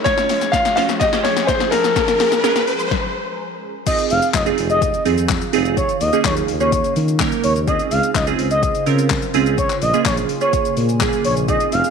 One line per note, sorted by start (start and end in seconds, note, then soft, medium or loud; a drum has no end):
0.00 riser medium
0.04 1.94 F3 medium
0.04 0.62 C#4 medium
0.04 2.88 C#4 medium
0.04 0.62 F4 medium
0.04 1.94 G#4 medium
0.04 0.54 C#5 loud
0.04 0.62 C#5 loud
0.04 kick loud
0.04 snare loud
0.04 closed hi-hat medium
0.04 shaker medium
0.18 snare loud
0.18 closed hi-hat medium
0.18 shaker medium
0.29 snare loud
0.29 open hi-hat medium
0.29 shaker medium
0.41 snare loud
0.41 closed hi-hat medium
0.41 shaker medium
0.52 0.74 F5 loud
0.52 kick loud
0.52 snare loud
0.52 closed hi-hat medium
0.52 shaker medium
0.65 snare loud
0.65 closed hi-hat medium
0.65 shaker medium
0.76 1.05 C#4 medium
0.76 1.05 F4 medium
0.76 1.05 C5 medium
0.76 0.81 F5 loud
0.76 snare loud
0.76 open hi-hat medium
0.76 shaker soft
0.89 snare loud
0.89 closed hi-hat soft
0.89 shaker medium
1.00 1.25 D#5 loud
1.00 kick loud
1.00 snare loud
1.00 closed hi-hat medium
1.00 shaker medium
1.12 1.78 C#4 medium
1.12 1.78 F4 medium
1.12 1.79 C5 medium
1.12 snare loud
1.12 closed hi-hat medium
1.12 shaker medium
1.23 1.49 C#5 loud
1.23 snare loud
1.23 open hi-hat medium
1.23 shaker medium
1.37 snare loud
1.37 closed hi-hat medium
1.37 shaker medium
1.47 1.70 C5 loud
1.47 kick loud
1.47 snare loud
1.47 closed hi-hat medium
1.47 shaker medium
1.60 snare loud
1.60 closed hi-hat soft
1.60 shaker soft
1.71 2.63 A#4 loud
1.71 snare loud
1.71 open hi-hat medium
1.71 shaker medium
1.84 snare loud
1.84 closed hi-hat soft
1.84 shaker medium
1.96 2.33 C#4 medium
1.96 2.34 G#4 medium
1.96 2.34 A#4 medium
1.96 kick loud
1.96 snare loud
1.96 closed hi-hat medium
1.96 shaker medium
2.08 snare loud
2.08 closed hi-hat medium
2.08 shaker medium
2.20 snare loud
2.20 open hi-hat medium
2.20 shaker medium
2.32 snare loud
2.32 closed hi-hat medium
2.32 shaker medium
2.43 2.81 C#4 medium
2.43 2.81 G#4 medium
2.43 2.81 A#4 loud
2.43 snare loud
2.43 closed hi-hat medium
2.43 shaker medium
2.56 snare loud
2.56 closed hi-hat medium
2.56 shaker medium
2.67 open hi-hat medium
2.67 shaker soft
2.79 closed hi-hat soft
2.79 shaker medium
2.91 kick loud
2.91 snare loud
3.86 5.75 D#3 medium
3.86 7.64 G#3 medium
3.86 4.33 C4 medium
3.86 4.33 D#4 medium
3.86 5.75 F4 medium
3.86 4.34 F4 medium
3.86 4.34 G#4 medium
3.86 4.06 D#5 loud
3.86 kick loud
3.86 closed hi-hat medium
3.86 crash loud
3.86 shaker medium
3.98 closed hi-hat medium
3.98 shaker medium
4.10 4.19 F1 loud
4.10 4.30 F5 medium
4.10 open hi-hat medium
4.10 shaker medium
4.22 closed hi-hat medium
4.22 shaker medium
4.34 4.51 F1 loud
4.34 4.44 D#5 medium
4.34 kick loud
4.34 snare loud
4.34 clap loud
4.34 closed hi-hat medium
4.34 shaker medium
4.46 4.93 C4 medium
4.46 4.93 D#4 medium
4.46 4.93 F4 medium
4.46 4.93 G#4 medium
4.46 closed hi-hat medium
4.46 shaker medium
4.58 4.91 F1 loud
4.58 open hi-hat medium
4.58 shaker soft
4.70 5.03 D#5 medium
4.70 closed hi-hat medium
4.70 shaker medium
4.82 kick loud
4.82 closed hi-hat medium
4.82 shaker medium
4.94 closed hi-hat medium
4.94 shaker medium
5.05 5.39 F2 loud
5.05 5.43 C4 medium
5.05 5.43 D#4 medium
5.05 5.43 F4 medium
5.05 5.43 G#4 medium
5.05 open hi-hat medium
5.05 shaker medium
5.18 closed hi-hat medium
5.18 shaker medium
5.29 kick loud
5.29 snare medium
5.29 clap loud
5.29 closed hi-hat medium
5.29 shaker medium
5.42 closed hi-hat medium
5.42 shaker soft
5.53 5.86 F1 loud
5.53 5.77 C4 loud
5.53 5.77 D#4 medium
5.53 5.77 F4 medium
5.53 5.77 G#4 loud
5.53 open hi-hat medium
5.53 shaker medium
5.65 closed hi-hat medium
5.65 shaker medium
5.77 7.66 C#3 medium
5.77 7.66 D#4 medium
5.77 5.96 C#5 loud
5.77 kick loud
5.77 closed hi-hat medium
5.77 shaker medium
5.89 closed hi-hat medium
5.89 shaker medium
6.01 6.09 D#2 loud
6.01 6.20 D#5 medium
6.01 open hi-hat medium
6.01 shaker medium
6.13 6.50 A#3 medium
6.13 6.50 C#4 medium
6.13 6.50 D#4 medium
6.13 6.50 G#4 loud
6.13 closed hi-hat medium
6.13 shaker medium
6.25 6.41 D#2 loud
6.25 6.34 C#5 medium
6.25 kick loud
6.25 snare loud
6.25 clap loud
6.25 closed hi-hat medium
6.25 shaker medium
6.37 closed hi-hat medium
6.37 shaker medium
6.48 6.81 D#2 medium
6.48 open hi-hat medium
6.48 shaker soft
6.60 7.07 A#3 medium
6.60 7.07 C#4 medium
6.60 7.07 D#4 medium
6.60 7.08 G#4 medium
6.60 6.94 C#5 medium
6.60 closed hi-hat medium
6.60 shaker medium
6.72 kick loud
6.72 closed hi-hat medium
6.72 shaker medium
6.84 closed hi-hat medium
6.84 shaker medium
6.96 7.29 D#3 loud
6.96 open hi-hat medium
6.96 shaker medium
7.08 closed hi-hat medium
7.08 shaker medium
7.20 7.57 A#3 medium
7.20 7.58 C#4 medium
7.20 7.58 D#4 medium
7.20 7.58 A#4 loud
7.20 kick loud
7.20 snare medium
7.20 clap loud
7.20 closed hi-hat medium
7.20 shaker medium
7.32 closed hi-hat medium
7.32 shaker soft
7.44 7.77 D#2 loud
7.44 7.53 C#5 medium
7.44 open hi-hat medium
7.44 shaker medium
7.56 closed hi-hat medium
7.56 shaker medium
7.67 9.56 C#3 medium
7.67 8.14 C4 medium
7.67 8.15 C#4 medium
7.67 8.15 F4 medium
7.67 9.56 F4 medium
7.67 8.15 G#4 medium
7.67 9.56 C5 medium
7.67 7.87 D#5 loud
7.67 kick loud
7.67 closed hi-hat medium
7.67 shaker medium
7.79 closed hi-hat medium
7.79 shaker medium
7.91 8.00 C#2 loud
7.91 8.11 F5 medium
7.91 open hi-hat medium
7.91 shaker medium
8.03 closed hi-hat medium
8.03 shaker medium
8.15 8.32 C#2 loud
8.15 8.25 D#5 medium
8.15 kick loud
8.15 snare loud
8.15 clap loud
8.15 closed hi-hat medium
8.15 shaker medium
8.27 8.74 C4 medium
8.27 8.74 C#4 medium
8.27 8.74 F4 medium
8.27 8.74 G#4 loud
8.27 closed hi-hat medium
8.27 shaker medium
8.39 8.72 C#2 medium
8.39 open hi-hat medium
8.39 shaker soft
8.51 8.84 D#5 medium
8.51 closed hi-hat soft
8.51 shaker medium
8.63 kick loud
8.63 closed hi-hat medium
8.63 shaker medium
8.75 closed hi-hat medium
8.75 shaker medium
8.86 9.19 C#3 loud
8.86 9.24 C4 medium
8.86 9.24 C#4 medium
8.86 9.24 F4 medium
8.86 9.24 A#4 medium
8.86 open hi-hat medium
8.86 shaker medium
8.99 closed hi-hat medium
8.99 shaker medium
9.10 kick loud
9.10 snare medium
9.10 clap loud
9.10 closed hi-hat medium
9.10 shaker medium
9.22 closed hi-hat medium
9.22 shaker medium
9.34 9.67 C#2 loud
9.34 9.58 C4 loud
9.34 9.58 C#4 medium
9.34 9.58 F4 medium
9.34 9.58 G#4 loud
9.34 open hi-hat medium
9.34 shaker medium
9.46 closed hi-hat soft
9.46 shaker medium
9.58 11.47 C#3 medium
9.58 11.47 A#3 medium
9.58 11.47 G#4 medium
9.58 9.77 C#5 medium
9.58 kick loud
9.58 closed hi-hat medium
9.58 shaker medium
9.70 clap medium
9.70 closed hi-hat medium
9.70 shaker medium
9.82 9.90 A#1 loud
9.82 10.01 D#5 medium
9.82 open hi-hat medium
9.82 shaker medium
9.94 10.31 A#3 medium
9.94 10.31 C#4 medium
9.94 10.31 F4 medium
9.94 10.31 G#4 loud
9.94 closed hi-hat medium
9.94 shaker medium
10.05 10.22 A#1 loud
10.05 10.15 C#5 medium
10.05 kick loud
10.05 snare loud
10.05 clap loud
10.05 closed hi-hat medium
10.05 shaker medium
10.17 closed hi-hat medium
10.17 shaker medium
10.29 open hi-hat medium
10.29 shaker medium
10.41 10.88 A#3 medium
10.41 10.88 C#4 medium
10.41 10.88 F4 medium
10.41 10.88 G#4 medium
10.41 10.75 C#5 medium
10.41 closed hi-hat soft
10.41 shaker medium
10.53 kick loud
10.53 closed hi-hat medium
10.53 shaker medium
10.65 closed hi-hat medium
10.65 shaker medium
10.77 11.10 A#2 loud
10.77 open hi-hat medium
10.77 shaker medium
10.89 closed hi-hat medium
10.89 shaker medium
11.01 11.38 A#3 medium
11.01 11.38 C#4 medium
11.01 11.38 F4 medium
11.01 11.39 G#4 medium
11.01 kick loud
11.01 snare medium
11.01 clap loud
11.01 closed hi-hat medium
11.01 shaker medium
11.13 closed hi-hat medium
11.13 shaker medium
11.25 11.58 A#1 medium
11.25 11.34 C#5 medium
11.25 open hi-hat medium
11.25 shaker medium
11.37 closed hi-hat soft
11.37 shaker medium
11.48 11.90 D#3 medium
11.48 11.90 G#3 medium
11.48 11.90 C4 medium
11.48 11.90 D#4 medium
11.48 11.90 F4 medium
11.48 11.90 G#4 medium
11.48 11.68 D#5 loud
11.48 kick loud
11.48 closed hi-hat medium
11.48 shaker medium
11.60 closed hi-hat medium
11.60 shaker medium
11.72 11.81 F1 loud
11.72 11.90 F5 medium
11.72 open hi-hat medium
11.72 shaker medium
11.84 closed hi-hat medium
11.84 shaker medium